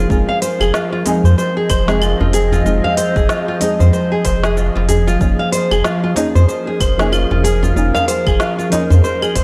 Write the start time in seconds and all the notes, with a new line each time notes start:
Already playing: F3 A#3 C#4 D#4 G#4 A#4 C5
0.08 F1 F3 G#3 C4 D#4 F4 G#4, kick, shaker
0.29 F5
0.34 G#4
0.42 C5, open hi-hat, shaker
0.60 F1 G#4, djembe slap, claves, shaker
0.74 F4 D#5, snare, shaker
0.78 C4
0.92 F4
1.04 F3 G#3 C4 D#4, open hi-hat, djembe slap, shaker
1.08 G#4
1.24 F2 C5, shaker
1.38 C5, shaker
1.57 G#4
1.69 F1 C5, kick, open hi-hat, djembe tone, claves, shaker
1.86 F3 G#3 C4 D#4 G#4, snare, djembe slap, shaker
1.90 G#4
2.02 F4, claves, shaker
2.20 F1 F4, djembe tone, djembe bass
2.33 G#4, open hi-hat, djembe tone, shaker
2.52 F4, djembe bass, shaker
2.63 F1 F3 G#3 C4 D#4 F4 G#4, shaker
2.84 F5, djembe tone
2.97 C5, open hi-hat, shaker
3.16 F1 G#4, kick, djembe slap, shaker
3.29 F4, snare, shaker
3.48 F4
3.59 F3 G#3 C4 D#4 G#4, open hi-hat, djembe slap, shaker
3.79 F2 C5, djembe bass, shaker
3.93 C5, shaker
4.12 G#4
4.25 F1 C5, kick, open hi-hat, djembe slap, djembe tone, shaker
4.43 G#4, snare, shaker
4.57 F4, shaker
4.75 F1 F4, djembe slap, djembe tone
4.88 G#4, open hi-hat, djembe bass, shaker
5.07 F4, shaker
5.19 F1 F3 A#3 C#4 D#4 F4, kick, shaker
5.23 G#4
5.39 F5
5.52 C5, open hi-hat, shaker
5.71 F1 G#4 A#4, djembe slap, claves, shaker
5.84 C#4 F4, snare, shaker
6.04 F4
6.15 F3 A#3 C#4 D#4, open hi-hat, djembe slap, shaker
6.19 G#4
6.35 F2 C5, shaker
6.48 C5, shaker
6.67 G#4
6.80 F1 C5, kick, open hi-hat, djembe tone, claves, shaker
6.97 F3 A#3 C#4 D#4 G#4, snare, djembe slap, shaker
7.01 G#4
7.12 F4, claves, shaker
7.31 F1 F4, djembe tone, djembe bass
7.44 G#4, open hi-hat, shaker
7.63 F4, djembe bass, shaker
7.74 F1 F3 A#3 C#4 D#4 F4, shaker
7.78 G#4
7.95 F5, djembe tone, shaker
8.08 C5, open hi-hat, shaker
8.26 F1 G#4, kick, djembe slap, claves, shaker
8.40 F4, snare, shaker
8.58 F4, shaker
8.69 F3 A#3 C#4 D#4, open hi-hat, djembe slap, djembe tone, shaker
8.73 G#4
8.90 F2 C5, djembe bass, shaker
9.04 C5, shaker
9.22 G#4, claves, shaker
9.35 F1 C5, kick, open hi-hat, djembe slap, djembe tone, shaker